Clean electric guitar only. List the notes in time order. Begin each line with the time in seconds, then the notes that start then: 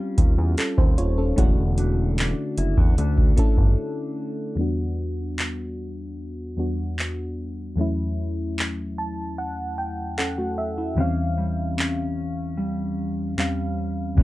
Already playing: G3 C#4 F4
1.38 D3
1.78 A3 D4 F#4
2.18 D4
2.58 E4
2.78 F#4
2.98 A3 D4 F#4
10.98 E3
11.38 G3
11.78 C#4
12.57 G3
13.38 G3
14.17 D3